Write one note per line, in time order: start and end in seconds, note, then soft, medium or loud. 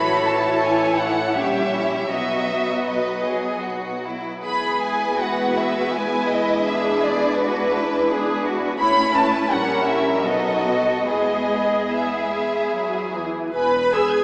0.00 1.34 A1 soft
0.00 0.62 E3 soft
0.00 1.33 E4 soft
0.00 0.64 F#4 soft
0.00 1.37 A4 soft
0.00 1.35 C#5 soft
0.00 0.27 B5 medium
0.28 0.64 A5 medium
0.63 1.35 E3 soft
0.63 1.37 E4 soft
0.63 1.00 G#5 medium
0.99 1.36 F#5 medium
1.36 2.11 A#1 soft
1.36 2.12 G3 soft
1.36 2.11 C#4 soft
1.36 1.73 G4 soft
1.36 2.10 C#5 soft
1.36 2.11 E5 medium
1.74 2.12 E4 soft
1.74 2.11 G4 soft
2.10 4.20 B1 soft
2.10 4.20 F#3 soft
2.10 4.24 B3 soft
2.10 2.78 F#4 soft
2.10 4.07 F#4 soft
2.10 2.80 D#5 soft
2.10 2.87 E5 medium
2.87 3.23 B4 soft
2.87 3.65 D#5 soft
3.26 3.65 G#4 soft
3.63 4.04 F#4 soft
4.05 4.42 E4 soft
4.44 8.75 E2 soft
4.44 8.75 G#3 soft
4.44 6.63 B3 soft
4.44 8.75 E4 soft
4.44 5.15 G#4 soft
4.44 8.75 B4 soft
4.44 4.80 B5 medium
4.84 5.20 G#5 medium
5.20 5.93 F#4 soft
5.20 5.57 F#5 soft
5.59 5.94 E5 medium
5.94 6.67 E4 soft
5.94 6.30 G#5 medium
6.30 6.67 D#5 medium
6.66 8.75 D4 soft
6.66 7.38 G#4 medium
6.66 7.04 E5 medium
7.05 7.40 D5 medium
7.40 7.74 F#4 soft
7.40 8.45 B4 medium
7.77 8.11 E4 soft
8.12 8.46 G#4 medium
8.47 8.80 F#4 soft
8.78 9.47 A1 medium
8.78 9.47 A3 soft
8.78 9.47 C#4 soft
8.78 9.46 E4 soft
8.78 9.50 E4 soft
8.78 9.12 C#5 soft
8.78 9.13 B5 medium
9.12 9.49 B4 soft
9.12 9.51 A5 medium
9.50 10.25 A#1 soft
9.50 10.24 G3 soft
9.50 10.24 C#4 soft
9.50 10.26 C#4 soft
9.50 10.24 E4 soft
9.50 10.23 A#4 soft
9.50 9.87 F#5 medium
9.88 10.25 E5 soft
10.24 11.08 B1 soft
10.24 11.07 F#3 soft
10.24 11.07 B3 soft
10.24 10.66 D#4 soft
10.24 11.05 F#4 soft
10.24 11.07 A4 soft
10.24 11.07 D#5 medium
10.66 11.07 F#4 soft
11.06 13.31 E2 soft
11.06 11.89 G#3 soft
11.06 11.89 B3 soft
11.06 11.89 E4 soft
11.06 11.89 G#4 soft
11.06 13.16 G#4 soft
11.06 11.89 D#5 medium
11.90 12.29 B3 soft
11.90 13.31 E4 soft
11.90 13.32 G#4 soft
11.90 13.16 E5 soft
12.32 12.73 G#3 soft
12.73 13.15 F#3 soft
13.15 13.56 E3 soft
13.55 14.18 E1 soft
13.55 14.19 E2 soft
13.55 13.91 B4 medium
13.55 13.73 G#5 soft
13.55 13.91 B5 soft
13.77 13.95 B5 soft
13.93 14.24 G#4 medium
13.93 14.24 G#5 medium
13.93 14.13 E6 soft
14.12 14.24 G#6 soft